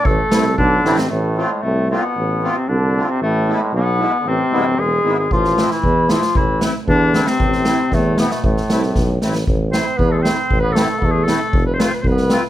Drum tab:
SD |--o---oo|--------|--------|--------|
BD |o---o---|--------|--------|--------|

SD |--------|-ooo--oo|--o---oo|-oo-o-oo|
BD |--------|o---o---|o---o---|o---o---|

SD |-oooo-oo|--o---o-|--o---o-|--o--oo-|
BD |o---o---|o---o---|o---o---|o---o---|